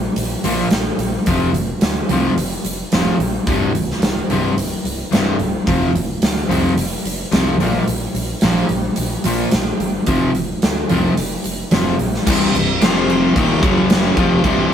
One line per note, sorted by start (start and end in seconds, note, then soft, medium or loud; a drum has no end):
0.16 0.34 A#1 medium
0.16 open hi-hat medium
0.44 0.62 A#1 medium
0.44 0.66 A#2 medium
0.44 0.66 F3 medium
0.44 0.67 A#3 medium
0.44 open hi-hat medium
0.71 0.89 A#1 medium
0.71 snare loud
0.71 open hi-hat medium
0.98 1.16 A#1 medium
0.98 open hi-hat medium
1.26 1.45 F1 medium
1.26 1.49 F2 medium
1.26 1.49 C3 medium
1.26 1.50 F3 loud
1.26 kick medium
1.26 open hi-hat medium
1.53 1.72 F1 medium
1.53 open hi-hat medium
1.81 1.99 D2 medium
1.81 snare loud
1.81 open hi-hat medium
2.09 2.27 C2 medium
2.09 2.32 F2 loud
2.09 2.33 C3 loud
2.09 2.33 F3 loud
2.09 open hi-hat medium
2.37 2.55 F1 medium
2.37 open hi-hat medium
2.64 2.82 F1 medium
2.64 open hi-hat medium
2.92 3.10 D1 medium
2.92 3.15 F2 medium
2.92 3.15 C3 medium
2.92 3.15 F3 medium
2.92 snare loud
2.92 open hi-hat medium
3.19 3.37 A#1 medium
3.19 open hi-hat medium
3.47 3.65 C1 medium
3.47 3.70 C2 medium
3.47 3.70 G2 loud
3.47 3.70 C3 loud
3.47 kick loud
3.47 open hi-hat medium
3.74 3.92 C1 medium
3.74 open hi-hat medium
3.90 snare soft
4.01 4.20 C1 medium
4.01 snare loud
4.01 open hi-hat medium
4.28 4.47 C1 medium
4.28 4.52 C2 medium
4.28 4.53 G2 loud
4.28 4.53 C3 loud
4.28 open hi-hat medium
4.56 4.75 C1 medium
4.56 open hi-hat medium
4.84 5.02 C1 medium
4.84 open hi-hat medium
5.11 5.30 C1 medium
5.11 5.34 C2 loud
5.11 5.35 G2 loud
5.11 5.35 C3 loud
5.11 snare loud
5.11 open hi-hat medium
5.39 5.57 C1 medium
5.39 open hi-hat soft
5.67 5.85 F1 medium
5.67 5.89 F2 loud
5.67 5.90 C3 loud
5.67 5.90 F3 loud
5.67 kick loud
5.67 open hi-hat medium
5.95 6.13 F1 medium
5.95 open hi-hat medium
6.22 6.40 D2 medium
6.22 snare loud
6.22 open hi-hat medium
6.49 6.67 C2 medium
6.49 6.72 F2 medium
6.49 6.72 C3 loud
6.49 6.72 F3 loud
6.49 open hi-hat medium
6.77 6.95 F1 medium
6.77 open hi-hat medium
7.05 7.23 F1 medium
7.05 open hi-hat medium
7.32 7.60 C2 medium
7.32 7.54 F2 loud
7.32 7.54 C3 loud
7.32 7.55 F3 loud
7.32 snare loud
7.32 open hi-hat medium
7.60 7.78 A#1 medium
7.60 7.82 A#2 medium
7.60 7.83 F3 medium
7.60 7.83 A#3 loud
7.60 open hi-hat medium
7.87 8.05 A#1 medium
7.87 open hi-hat medium
8.14 8.33 A#1 medium
8.14 open hi-hat medium
8.41 8.61 A#1 loud
8.41 8.65 A#2 medium
8.41 8.65 F3 medium
8.41 8.66 A#3 loud
8.41 snare loud
8.41 open hi-hat medium
8.69 8.88 A#1 medium
8.69 open hi-hat medium
8.96 9.16 A#1 loud
8.96 open hi-hat medium
9.24 9.42 A#1 medium
9.24 9.47 A#2 medium
9.24 9.48 F3 medium
9.24 9.48 A#3 loud
9.24 open hi-hat medium
9.51 9.71 A#1 medium
9.51 snare loud
9.51 open hi-hat medium
9.80 9.98 G1 medium
9.80 open hi-hat medium
10.06 10.25 F1 medium
10.06 10.29 F2 medium
10.06 10.29 C3 loud
10.06 10.30 F3 loud
10.06 kick loud
10.06 open hi-hat medium
10.35 10.53 F1 medium
10.35 open hi-hat medium
10.62 10.81 D2 medium
10.62 snare loud
10.62 open hi-hat medium
10.89 11.08 C2 medium
10.89 11.12 F2 loud
10.89 11.12 C3 loud
10.89 11.12 F3 loud
10.89 open hi-hat medium
11.17 11.35 F1 loud
11.17 open hi-hat medium
11.44 11.62 F1 medium
11.44 open hi-hat medium
11.71 11.89 D1 medium
11.71 11.94 F2 medium
11.71 11.94 C3 medium
11.71 11.94 F3 loud
11.71 snare loud
11.71 open hi-hat medium
11.99 12.17 A#1 medium
11.99 open hi-hat medium
12.14 snare soft
12.27 12.52 C1 medium
12.27 12.54 C2 medium
12.27 12.54 G2 loud
12.27 12.54 C3 loud
12.27 13.34 C4 medium
12.27 12.81 G4 medium
12.27 12.82 D5 medium
12.27 kick loud
12.27 crash loud
12.27 crash medium
12.54 12.79 C1 loud
12.54 12.76 C2 medium
12.54 12.77 G2 medium
12.54 crash medium
12.81 13.32 F1 loud
12.81 13.35 F2 medium
12.81 13.36 C3 loud
12.81 13.36 F3 medium
12.81 13.36 F3 loud
12.81 13.36 G4 medium
12.81 snare loud
12.81 crash medium
13.10 crash medium
13.35 13.61 D#1 loud
13.35 13.61 D#2 loud
13.35 13.62 A#2 loud
13.35 13.63 D#3 loud
13.35 13.63 C4 medium
13.35 13.64 G4 medium
13.35 13.64 D5 medium
13.35 kick loud
13.35 crash medium
13.62 14.13 F#1 loud
13.62 14.16 F#2 medium
13.62 14.17 C#3 loud
13.62 14.17 F#3 medium
13.62 14.17 C#4 medium
13.62 14.18 G#4 medium
13.62 kick loud
13.62 crash medium
13.90 snare loud
13.90 crash medium
14.16 14.42 F1 medium
14.16 14.43 F2 medium
14.16 14.43 C3 loud
14.16 14.44 F3 loud
14.16 14.74 C4 medium
14.16 14.74 D5 medium
14.16 kick loud
14.16 crash medium
14.21 14.74 G4 medium
14.43 14.70 C1 medium
14.43 14.71 C2 loud
14.43 14.71 G2 loud
14.43 14.71 C3 loud
14.43 kick medium
14.43 crash medium